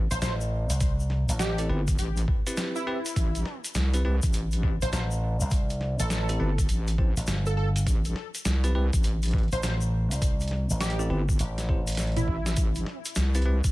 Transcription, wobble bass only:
1.69 G1
1.98 A1
3.16 A1
3.75 C2
4.23 A1
6.40 G1
6.70 A1
7.87 A1
8.45 C2
8.93 A1
11.10 G1
12.28 A1
12.57 A1
13.17 C2
13.64 A1

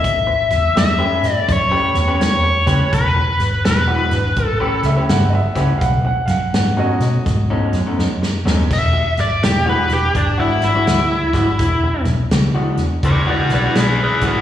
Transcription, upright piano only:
4.86 E5
5.10 F#5
5.30 D#5
5.35 E5
5.57 F#5
5.78 F5 F#5
6.07 F#5
6.26 F5
6.30 F#5
6.54 F#5
6.78 F#4 D#5

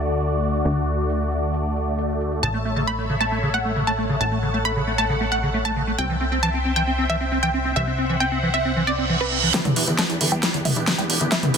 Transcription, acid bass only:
2.43 C#3
2.54 A3
2.65 A3
2.76 C#3
2.87 A3
2.98 A3
3.10 C#3
3.21 A3
3.32 A3
3.43 C#3
3.54 A3
3.65 A3
3.76 C#3
3.87 A3
3.98 A3
4.09 C#3
4.21 A3
4.32 A3
4.43 C#3
4.54 A3
4.65 A3
4.76 C#3
4.87 A3
4.98 A3
5.10 C#3
5.21 A3
5.32 A3
5.43 C#3
5.54 A3
5.65 A3
5.76 C#3
5.87 A3
5.98 C4
6.10 E3
6.21 C4
6.32 C4
6.43 E3
6.54 C4
6.65 C4
6.76 E3
6.87 C4
6.98 C4
7.10 E3
7.21 C4
7.32 C4
7.43 E3
7.54 C4
7.65 C4
7.76 E3
7.87 C4
7.98 C4
8.09 E3
8.21 C4
8.32 C4
8.43 E3
8.54 C4
8.65 C4
8.76 E3
8.87 C4
8.98 C4
9.10 E3
9.21 C4
9.32 C4
9.43 E3
9.54 D3
9.65 G3
9.76 E4
9.87 D3
9.99 G3
10.10 E4
10.21 D3
10.32 G3
10.43 E4
10.54 D3
10.65 G3
10.76 E4
10.87 D3
10.98 G3
11.10 E4
11.21 D3
11.32 G3
11.43 E4
11.54 D3

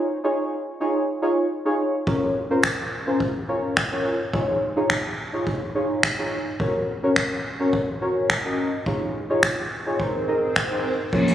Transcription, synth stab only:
0.24 D#4 F4 G#4 C#5
0.80 D#4 F4 G#4 C#5
1.22 D#4 F4 G#4 C#5
1.65 D#4 F4 G#4 C#5
2.07 C#4 F4 A#4 C#5
2.50 C#4 F4 A#4 C5
3.07 C#4 F4 A#4 C5
3.48 C#4 F4 A#4 C#5
3.92 C#4 F4 A#4 C#5
4.33 D#4 F4 G#4 C#5
4.76 D#4 F4 G#4 C#5
5.33 D#4 F4 G#4 C#5
5.75 D#4 F4 G#4 C#5
6.18 D#4 F4 G#4 C#5
6.60 C#4 F#4 A#4 C#5
7.03 C#4 F#4 A#4 C#5
7.60 C#4 F#4 A#4 C#5
8.01 C#4 F#4 A#4 C#5
8.44 C#4 F#4 A#4 D#5
8.86 D#4 F4 G#4 C#5
9.30 D#4 F4 G#4 C#5
9.86 D#4 F4 G#4 C#5
9.99 D#4 G#4 A#4 C5
10.28 D#4 G#4 A#4 D#5
10.71 D#4 G#4 A#4 C5
11.13 C#4 F4 A#4 C#5

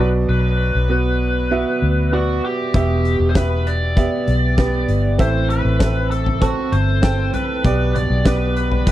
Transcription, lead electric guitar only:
0.29 B4
2.14 F#4
2.45 G4
2.75 G4
3.29 C5
3.37 B4
3.67 D5
5.21 C5
5.50 B4
6.11 A4
6.42 F#4
6.72 C5
7.34 B4
7.96 D5
8.26 B4
8.57 B4

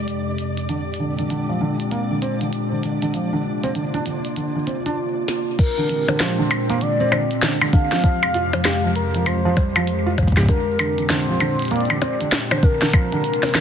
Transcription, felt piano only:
0.69 D3
1.00 D3
1.19 D3
1.30 D3
1.49 F3
1.61 D3
1.91 A#3
2.10 D3
2.22 C4
2.41 D3
2.72 D3
2.83 D3
3.02 D3
3.14 F3
3.33 D3
3.63 C4
3.75 D3
3.94 D4
4.06 D3
4.36 D3
4.55 D3
4.67 C4
4.86 D4
5.78 D3
5.89 D3
6.08 D3
6.20 F3
6.39 D3
6.70 A#3
6.81 D3
7.00 C4
7.12 D3
7.43 D3
7.62 D3
7.73 D3
7.92 F3
8.04 F3
8.34 F4
8.53 F3
8.65 G4
8.84 F3
9.15 F3
9.26 F3
9.45 F3
9.57 G3
9.76 F3
10.06 F4
10.18 F3
10.37 G4
10.49 D3
10.79 D3
10.98 D3
11.10 D3
11.29 F3
11.40 D3
11.71 A#3
11.90 D3
12.02 C4
12.21 D3
12.51 D3
12.63 D3
12.82 D3
12.93 F3
13.12 D3
13.43 C4
13.55 D3

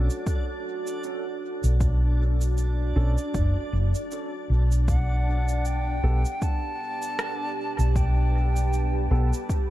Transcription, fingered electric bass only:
1.64 B1
2.96 B1
3.34 F#1
3.73 F#1
4.50 B1
6.03 B1
7.79 B1
9.11 B1

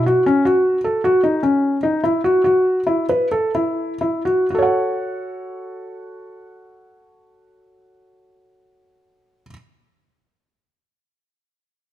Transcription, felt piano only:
0.06 F#4
0.26 C#4
0.45 F#4
0.84 A4
1.04 F#4
1.23 D#4
1.43 C#4
1.83 D#4
2.04 E4
2.24 F#4
2.44 F#4
2.87 E4
3.09 B4
3.32 A4
3.55 E4
4.01 E4
4.25 F#4
4.50 F#4
4.55 A4 C#5
4.62 F#5

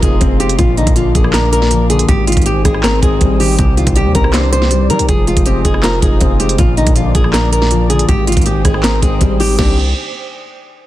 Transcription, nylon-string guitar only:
0.03 G#4
0.40 G4
0.59 F4
0.78 D#4
0.96 F4
1.15 G#4
1.34 A#4
1.52 A#4
1.90 G#4
2.09 G4
2.27 F4
2.46 G4
2.65 G#4
2.84 A#4
3.03 G#4
3.40 G4
3.59 G4
3.77 F4
3.96 G4
4.15 A#4
4.34 C5
4.52 C5
4.90 A#4
5.09 G#4
5.28 F4
5.46 G4
5.65 G#4
5.84 A#4
6.02 G#4
6.40 G4
6.58 F4
6.77 D#4
6.96 F4
7.15 G#4
7.34 A#4
7.52 A#4
7.90 G#4
8.09 G4
8.27 F4
8.46 G4
8.65 G#4
8.84 A#4
9.03 G#4
9.40 G4
9.59 G4

